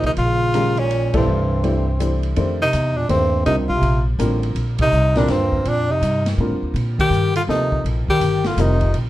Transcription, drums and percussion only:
0, 0, Header, 1, 2, 480
1, 0, Start_track
1, 0, Tempo, 365186
1, 238, Time_signature, 3, 2, 24, 8
1, 11957, End_track
2, 0, Start_track
2, 0, Title_t, "Drums"
2, 45, Note_on_c, 9, 51, 45
2, 53, Note_on_c, 9, 36, 48
2, 177, Note_off_c, 9, 51, 0
2, 185, Note_off_c, 9, 36, 0
2, 217, Note_on_c, 9, 51, 56
2, 349, Note_off_c, 9, 51, 0
2, 707, Note_on_c, 9, 44, 43
2, 707, Note_on_c, 9, 51, 62
2, 839, Note_off_c, 9, 44, 0
2, 839, Note_off_c, 9, 51, 0
2, 1015, Note_on_c, 9, 51, 40
2, 1146, Note_off_c, 9, 51, 0
2, 1191, Note_on_c, 9, 51, 50
2, 1323, Note_off_c, 9, 51, 0
2, 1493, Note_on_c, 9, 51, 69
2, 1497, Note_on_c, 9, 36, 76
2, 1625, Note_off_c, 9, 51, 0
2, 1628, Note_off_c, 9, 36, 0
2, 2152, Note_on_c, 9, 51, 48
2, 2283, Note_off_c, 9, 51, 0
2, 2632, Note_on_c, 9, 44, 52
2, 2632, Note_on_c, 9, 51, 58
2, 2763, Note_off_c, 9, 44, 0
2, 2763, Note_off_c, 9, 51, 0
2, 2933, Note_on_c, 9, 51, 39
2, 3065, Note_off_c, 9, 51, 0
2, 3106, Note_on_c, 9, 51, 55
2, 3237, Note_off_c, 9, 51, 0
2, 3589, Note_on_c, 9, 44, 52
2, 3589, Note_on_c, 9, 51, 60
2, 3720, Note_off_c, 9, 44, 0
2, 3720, Note_off_c, 9, 51, 0
2, 4064, Note_on_c, 9, 51, 57
2, 4196, Note_off_c, 9, 51, 0
2, 4548, Note_on_c, 9, 51, 54
2, 4679, Note_off_c, 9, 51, 0
2, 4862, Note_on_c, 9, 36, 51
2, 4993, Note_off_c, 9, 36, 0
2, 5029, Note_on_c, 9, 51, 55
2, 5160, Note_off_c, 9, 51, 0
2, 5514, Note_on_c, 9, 44, 51
2, 5514, Note_on_c, 9, 51, 66
2, 5646, Note_off_c, 9, 44, 0
2, 5646, Note_off_c, 9, 51, 0
2, 5823, Note_on_c, 9, 51, 44
2, 5955, Note_off_c, 9, 51, 0
2, 5989, Note_on_c, 9, 51, 54
2, 6121, Note_off_c, 9, 51, 0
2, 6289, Note_on_c, 9, 51, 76
2, 6298, Note_on_c, 9, 36, 79
2, 6421, Note_off_c, 9, 51, 0
2, 6430, Note_off_c, 9, 36, 0
2, 6461, Note_on_c, 9, 44, 44
2, 6592, Note_off_c, 9, 44, 0
2, 6775, Note_on_c, 9, 51, 41
2, 6778, Note_on_c, 9, 38, 34
2, 6907, Note_off_c, 9, 51, 0
2, 6909, Note_off_c, 9, 38, 0
2, 6943, Note_on_c, 9, 51, 54
2, 6946, Note_on_c, 9, 38, 34
2, 7075, Note_off_c, 9, 51, 0
2, 7078, Note_off_c, 9, 38, 0
2, 7259, Note_on_c, 9, 36, 54
2, 7390, Note_off_c, 9, 36, 0
2, 7431, Note_on_c, 9, 51, 55
2, 7562, Note_off_c, 9, 51, 0
2, 7920, Note_on_c, 9, 44, 52
2, 7920, Note_on_c, 9, 51, 64
2, 8051, Note_off_c, 9, 44, 0
2, 8051, Note_off_c, 9, 51, 0
2, 8229, Note_on_c, 9, 51, 62
2, 8232, Note_on_c, 9, 38, 41
2, 8360, Note_off_c, 9, 51, 0
2, 8363, Note_off_c, 9, 38, 0
2, 8882, Note_on_c, 9, 51, 55
2, 9013, Note_off_c, 9, 51, 0
2, 9191, Note_on_c, 9, 36, 78
2, 9196, Note_on_c, 9, 51, 70
2, 9323, Note_off_c, 9, 36, 0
2, 9327, Note_off_c, 9, 51, 0
2, 9364, Note_on_c, 9, 44, 54
2, 9495, Note_off_c, 9, 44, 0
2, 9667, Note_on_c, 9, 51, 68
2, 9799, Note_off_c, 9, 51, 0
2, 9845, Note_on_c, 9, 38, 36
2, 9977, Note_off_c, 9, 38, 0
2, 10150, Note_on_c, 9, 36, 52
2, 10281, Note_off_c, 9, 36, 0
2, 10327, Note_on_c, 9, 51, 55
2, 10458, Note_off_c, 9, 51, 0
2, 10628, Note_on_c, 9, 36, 59
2, 10759, Note_off_c, 9, 36, 0
2, 10793, Note_on_c, 9, 44, 47
2, 10793, Note_on_c, 9, 51, 66
2, 10924, Note_off_c, 9, 44, 0
2, 10924, Note_off_c, 9, 51, 0
2, 11097, Note_on_c, 9, 51, 44
2, 11100, Note_on_c, 9, 38, 52
2, 11229, Note_off_c, 9, 51, 0
2, 11231, Note_off_c, 9, 38, 0
2, 11272, Note_on_c, 9, 44, 53
2, 11272, Note_on_c, 9, 51, 65
2, 11403, Note_off_c, 9, 44, 0
2, 11403, Note_off_c, 9, 51, 0
2, 11576, Note_on_c, 9, 51, 45
2, 11583, Note_on_c, 9, 36, 46
2, 11707, Note_off_c, 9, 51, 0
2, 11715, Note_off_c, 9, 36, 0
2, 11747, Note_on_c, 9, 51, 55
2, 11879, Note_off_c, 9, 51, 0
2, 11957, End_track
0, 0, End_of_file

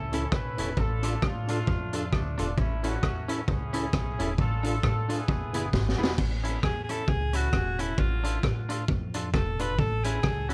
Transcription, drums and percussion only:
0, 0, Header, 1, 2, 480
1, 0, Start_track
1, 0, Key_signature, 3, "major"
1, 0, Tempo, 450789
1, 823, Time_signature, 4, 2, 24, 8
1, 11221, End_track
2, 0, Start_track
2, 0, Title_t, "Drums"
2, 135, Note_on_c, 9, 42, 92
2, 241, Note_off_c, 9, 42, 0
2, 341, Note_on_c, 9, 36, 117
2, 341, Note_on_c, 9, 37, 97
2, 447, Note_off_c, 9, 37, 0
2, 448, Note_off_c, 9, 36, 0
2, 618, Note_on_c, 9, 42, 85
2, 725, Note_off_c, 9, 42, 0
2, 820, Note_on_c, 9, 36, 112
2, 927, Note_off_c, 9, 36, 0
2, 1095, Note_on_c, 9, 42, 91
2, 1201, Note_off_c, 9, 42, 0
2, 1303, Note_on_c, 9, 36, 111
2, 1304, Note_on_c, 9, 37, 100
2, 1409, Note_off_c, 9, 36, 0
2, 1411, Note_off_c, 9, 37, 0
2, 1580, Note_on_c, 9, 42, 85
2, 1687, Note_off_c, 9, 42, 0
2, 1782, Note_on_c, 9, 36, 107
2, 1889, Note_off_c, 9, 36, 0
2, 2053, Note_on_c, 9, 42, 94
2, 2160, Note_off_c, 9, 42, 0
2, 2263, Note_on_c, 9, 36, 106
2, 2264, Note_on_c, 9, 37, 91
2, 2370, Note_off_c, 9, 36, 0
2, 2371, Note_off_c, 9, 37, 0
2, 2540, Note_on_c, 9, 42, 90
2, 2646, Note_off_c, 9, 42, 0
2, 2743, Note_on_c, 9, 36, 108
2, 2849, Note_off_c, 9, 36, 0
2, 3020, Note_on_c, 9, 42, 89
2, 3127, Note_off_c, 9, 42, 0
2, 3226, Note_on_c, 9, 36, 96
2, 3226, Note_on_c, 9, 37, 109
2, 3332, Note_off_c, 9, 36, 0
2, 3333, Note_off_c, 9, 37, 0
2, 3502, Note_on_c, 9, 42, 85
2, 3608, Note_off_c, 9, 42, 0
2, 3705, Note_on_c, 9, 36, 112
2, 3811, Note_off_c, 9, 36, 0
2, 3977, Note_on_c, 9, 42, 92
2, 4083, Note_off_c, 9, 42, 0
2, 4187, Note_on_c, 9, 36, 106
2, 4189, Note_on_c, 9, 37, 101
2, 4293, Note_off_c, 9, 36, 0
2, 4296, Note_off_c, 9, 37, 0
2, 4466, Note_on_c, 9, 42, 85
2, 4573, Note_off_c, 9, 42, 0
2, 4667, Note_on_c, 9, 36, 110
2, 4774, Note_off_c, 9, 36, 0
2, 4944, Note_on_c, 9, 42, 89
2, 5050, Note_off_c, 9, 42, 0
2, 5147, Note_on_c, 9, 36, 103
2, 5149, Note_on_c, 9, 37, 94
2, 5254, Note_off_c, 9, 36, 0
2, 5256, Note_off_c, 9, 37, 0
2, 5425, Note_on_c, 9, 42, 80
2, 5532, Note_off_c, 9, 42, 0
2, 5626, Note_on_c, 9, 36, 113
2, 5733, Note_off_c, 9, 36, 0
2, 5897, Note_on_c, 9, 42, 96
2, 6003, Note_off_c, 9, 42, 0
2, 6105, Note_on_c, 9, 36, 109
2, 6109, Note_on_c, 9, 38, 57
2, 6211, Note_off_c, 9, 36, 0
2, 6216, Note_off_c, 9, 38, 0
2, 6267, Note_on_c, 9, 38, 67
2, 6373, Note_off_c, 9, 38, 0
2, 6425, Note_on_c, 9, 38, 101
2, 6531, Note_off_c, 9, 38, 0
2, 6582, Note_on_c, 9, 36, 113
2, 6585, Note_on_c, 9, 49, 94
2, 6688, Note_off_c, 9, 36, 0
2, 6691, Note_off_c, 9, 49, 0
2, 6862, Note_on_c, 9, 42, 91
2, 6969, Note_off_c, 9, 42, 0
2, 7061, Note_on_c, 9, 36, 100
2, 7063, Note_on_c, 9, 37, 101
2, 7167, Note_off_c, 9, 36, 0
2, 7170, Note_off_c, 9, 37, 0
2, 7336, Note_on_c, 9, 42, 81
2, 7442, Note_off_c, 9, 42, 0
2, 7537, Note_on_c, 9, 36, 110
2, 7643, Note_off_c, 9, 36, 0
2, 7806, Note_on_c, 9, 42, 94
2, 7913, Note_off_c, 9, 42, 0
2, 8017, Note_on_c, 9, 36, 117
2, 8018, Note_on_c, 9, 37, 94
2, 8123, Note_off_c, 9, 36, 0
2, 8125, Note_off_c, 9, 37, 0
2, 8295, Note_on_c, 9, 42, 87
2, 8401, Note_off_c, 9, 42, 0
2, 8497, Note_on_c, 9, 36, 114
2, 8603, Note_off_c, 9, 36, 0
2, 8778, Note_on_c, 9, 42, 88
2, 8884, Note_off_c, 9, 42, 0
2, 8980, Note_on_c, 9, 36, 105
2, 8984, Note_on_c, 9, 37, 104
2, 9086, Note_off_c, 9, 36, 0
2, 9091, Note_off_c, 9, 37, 0
2, 9259, Note_on_c, 9, 42, 92
2, 9366, Note_off_c, 9, 42, 0
2, 9459, Note_on_c, 9, 36, 111
2, 9566, Note_off_c, 9, 36, 0
2, 9730, Note_on_c, 9, 42, 101
2, 9837, Note_off_c, 9, 42, 0
2, 9941, Note_on_c, 9, 36, 111
2, 9943, Note_on_c, 9, 37, 99
2, 10047, Note_off_c, 9, 36, 0
2, 10049, Note_off_c, 9, 37, 0
2, 10214, Note_on_c, 9, 42, 89
2, 10321, Note_off_c, 9, 42, 0
2, 10420, Note_on_c, 9, 36, 107
2, 10526, Note_off_c, 9, 36, 0
2, 10693, Note_on_c, 9, 42, 89
2, 10799, Note_off_c, 9, 42, 0
2, 10896, Note_on_c, 9, 37, 105
2, 10900, Note_on_c, 9, 36, 96
2, 11002, Note_off_c, 9, 37, 0
2, 11006, Note_off_c, 9, 36, 0
2, 11178, Note_on_c, 9, 42, 84
2, 11221, Note_off_c, 9, 42, 0
2, 11221, End_track
0, 0, End_of_file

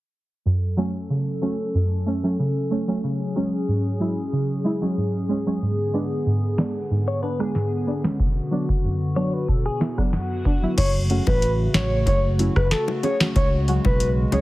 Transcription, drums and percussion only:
0, 0, Header, 1, 2, 480
1, 0, Start_track
1, 0, Key_signature, 3, "minor"
1, 0, Tempo, 645161
1, 338, Time_signature, 4, 2, 24, 8
1, 10721, End_track
2, 0, Start_track
2, 0, Title_t, "Drums"
2, 4897, Note_on_c, 9, 38, 109
2, 4971, Note_off_c, 9, 38, 0
2, 5506, Note_on_c, 9, 37, 80
2, 5581, Note_off_c, 9, 37, 0
2, 5617, Note_on_c, 9, 38, 62
2, 5691, Note_off_c, 9, 38, 0
2, 5985, Note_on_c, 9, 38, 97
2, 6060, Note_off_c, 9, 38, 0
2, 6098, Note_on_c, 9, 36, 110
2, 6172, Note_off_c, 9, 36, 0
2, 6466, Note_on_c, 9, 36, 88
2, 6540, Note_off_c, 9, 36, 0
2, 7057, Note_on_c, 9, 36, 85
2, 7131, Note_off_c, 9, 36, 0
2, 7299, Note_on_c, 9, 38, 110
2, 7373, Note_off_c, 9, 38, 0
2, 7425, Note_on_c, 9, 36, 85
2, 7426, Note_on_c, 9, 37, 82
2, 7500, Note_off_c, 9, 36, 0
2, 7500, Note_off_c, 9, 37, 0
2, 7536, Note_on_c, 9, 38, 62
2, 7611, Note_off_c, 9, 38, 0
2, 7777, Note_on_c, 9, 36, 92
2, 7852, Note_off_c, 9, 36, 0
2, 8018, Note_on_c, 9, 36, 118
2, 8018, Note_on_c, 9, 42, 69
2, 8018, Note_on_c, 9, 49, 102
2, 8019, Note_on_c, 9, 60, 71
2, 8092, Note_off_c, 9, 36, 0
2, 8092, Note_off_c, 9, 42, 0
2, 8092, Note_off_c, 9, 49, 0
2, 8094, Note_off_c, 9, 60, 0
2, 8258, Note_on_c, 9, 42, 61
2, 8332, Note_off_c, 9, 42, 0
2, 8383, Note_on_c, 9, 60, 78
2, 8386, Note_on_c, 9, 36, 87
2, 8458, Note_off_c, 9, 60, 0
2, 8460, Note_off_c, 9, 36, 0
2, 8499, Note_on_c, 9, 42, 78
2, 8573, Note_off_c, 9, 42, 0
2, 8737, Note_on_c, 9, 38, 116
2, 8737, Note_on_c, 9, 60, 61
2, 8737, Note_on_c, 9, 61, 82
2, 8738, Note_on_c, 9, 42, 51
2, 8811, Note_off_c, 9, 38, 0
2, 8812, Note_off_c, 9, 42, 0
2, 8812, Note_off_c, 9, 60, 0
2, 8812, Note_off_c, 9, 61, 0
2, 8976, Note_on_c, 9, 36, 92
2, 8978, Note_on_c, 9, 42, 61
2, 8979, Note_on_c, 9, 60, 68
2, 9051, Note_off_c, 9, 36, 0
2, 9053, Note_off_c, 9, 42, 0
2, 9053, Note_off_c, 9, 60, 0
2, 9220, Note_on_c, 9, 42, 52
2, 9294, Note_off_c, 9, 42, 0
2, 9346, Note_on_c, 9, 36, 88
2, 9347, Note_on_c, 9, 37, 91
2, 9420, Note_off_c, 9, 36, 0
2, 9421, Note_off_c, 9, 37, 0
2, 9458, Note_on_c, 9, 38, 70
2, 9458, Note_on_c, 9, 42, 69
2, 9532, Note_off_c, 9, 38, 0
2, 9532, Note_off_c, 9, 42, 0
2, 9582, Note_on_c, 9, 60, 75
2, 9656, Note_off_c, 9, 60, 0
2, 9697, Note_on_c, 9, 42, 52
2, 9698, Note_on_c, 9, 61, 74
2, 9772, Note_off_c, 9, 42, 0
2, 9773, Note_off_c, 9, 61, 0
2, 9824, Note_on_c, 9, 38, 111
2, 9898, Note_off_c, 9, 38, 0
2, 9938, Note_on_c, 9, 36, 117
2, 9938, Note_on_c, 9, 42, 72
2, 9938, Note_on_c, 9, 60, 70
2, 10012, Note_off_c, 9, 36, 0
2, 10012, Note_off_c, 9, 42, 0
2, 10012, Note_off_c, 9, 60, 0
2, 10178, Note_on_c, 9, 42, 60
2, 10252, Note_off_c, 9, 42, 0
2, 10302, Note_on_c, 9, 60, 77
2, 10306, Note_on_c, 9, 36, 92
2, 10376, Note_off_c, 9, 60, 0
2, 10380, Note_off_c, 9, 36, 0
2, 10418, Note_on_c, 9, 42, 79
2, 10492, Note_off_c, 9, 42, 0
2, 10655, Note_on_c, 9, 60, 61
2, 10655, Note_on_c, 9, 61, 80
2, 10657, Note_on_c, 9, 42, 52
2, 10721, Note_off_c, 9, 42, 0
2, 10721, Note_off_c, 9, 60, 0
2, 10721, Note_off_c, 9, 61, 0
2, 10721, End_track
0, 0, End_of_file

